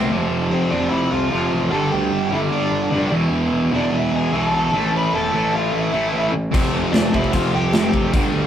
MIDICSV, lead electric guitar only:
0, 0, Header, 1, 2, 480
1, 0, Start_track
1, 0, Tempo, 400802
1, 143, Time_signature, 4, 2, 24, 8
1, 10142, End_track
2, 0, Start_track
2, 0, Title_t, "Lead electric guitar"
2, 0, Program_c, 0, 29
2, 616, Note_on_c, 0, 72, 76
2, 638, Note_on_c, 0, 60, 59
2, 839, Note_on_c, 0, 74, 87
2, 851, Note_off_c, 0, 60, 0
2, 856, Note_on_c, 0, 62, 70
2, 866, Note_off_c, 0, 72, 0
2, 1062, Note_off_c, 0, 74, 0
2, 1062, Note_on_c, 0, 76, 89
2, 1067, Note_on_c, 0, 64, 77
2, 1081, Note_off_c, 0, 62, 0
2, 1306, Note_off_c, 0, 64, 0
2, 1326, Note_off_c, 0, 76, 0
2, 1326, Note_on_c, 0, 77, 100
2, 1337, Note_on_c, 0, 65, 67
2, 2011, Note_off_c, 0, 65, 0
2, 2045, Note_on_c, 0, 69, 78
2, 2052, Note_on_c, 0, 81, 79
2, 2053, Note_off_c, 0, 77, 0
2, 2276, Note_off_c, 0, 69, 0
2, 2278, Note_off_c, 0, 81, 0
2, 2286, Note_on_c, 0, 67, 84
2, 2291, Note_on_c, 0, 79, 97
2, 2740, Note_off_c, 0, 67, 0
2, 2780, Note_off_c, 0, 79, 0
2, 2785, Note_on_c, 0, 64, 74
2, 2793, Note_on_c, 0, 76, 83
2, 2849, Note_off_c, 0, 64, 0
2, 2857, Note_off_c, 0, 76, 0
2, 3022, Note_on_c, 0, 62, 58
2, 3026, Note_on_c, 0, 74, 74
2, 3696, Note_off_c, 0, 62, 0
2, 3743, Note_off_c, 0, 74, 0
2, 4491, Note_on_c, 0, 62, 69
2, 4511, Note_on_c, 0, 74, 82
2, 4702, Note_off_c, 0, 62, 0
2, 4734, Note_off_c, 0, 74, 0
2, 4738, Note_on_c, 0, 64, 67
2, 4757, Note_on_c, 0, 76, 86
2, 4945, Note_off_c, 0, 64, 0
2, 4955, Note_off_c, 0, 76, 0
2, 4979, Note_on_c, 0, 68, 72
2, 4984, Note_on_c, 0, 80, 94
2, 5186, Note_off_c, 0, 68, 0
2, 5210, Note_off_c, 0, 80, 0
2, 5212, Note_on_c, 0, 69, 84
2, 5223, Note_on_c, 0, 81, 103
2, 5870, Note_off_c, 0, 69, 0
2, 5876, Note_off_c, 0, 81, 0
2, 5945, Note_on_c, 0, 71, 68
2, 5956, Note_on_c, 0, 83, 81
2, 6151, Note_off_c, 0, 71, 0
2, 6153, Note_off_c, 0, 83, 0
2, 6160, Note_on_c, 0, 69, 70
2, 6162, Note_on_c, 0, 81, 79
2, 6600, Note_off_c, 0, 69, 0
2, 6646, Note_off_c, 0, 81, 0
2, 6651, Note_on_c, 0, 65, 65
2, 6653, Note_on_c, 0, 77, 68
2, 6861, Note_off_c, 0, 77, 0
2, 6863, Note_off_c, 0, 65, 0
2, 6898, Note_on_c, 0, 76, 75
2, 6902, Note_on_c, 0, 64, 50
2, 7553, Note_off_c, 0, 64, 0
2, 7554, Note_off_c, 0, 76, 0
2, 8294, Note_on_c, 0, 74, 70
2, 8301, Note_on_c, 0, 62, 63
2, 8526, Note_off_c, 0, 62, 0
2, 8530, Note_on_c, 0, 76, 84
2, 8538, Note_on_c, 0, 64, 59
2, 8547, Note_off_c, 0, 74, 0
2, 8756, Note_on_c, 0, 65, 81
2, 8763, Note_off_c, 0, 76, 0
2, 8763, Note_on_c, 0, 77, 108
2, 8765, Note_off_c, 0, 64, 0
2, 8993, Note_off_c, 0, 65, 0
2, 9014, Note_off_c, 0, 77, 0
2, 9031, Note_on_c, 0, 67, 66
2, 9032, Note_on_c, 0, 79, 91
2, 9698, Note_off_c, 0, 79, 0
2, 9699, Note_off_c, 0, 67, 0
2, 10142, End_track
0, 0, End_of_file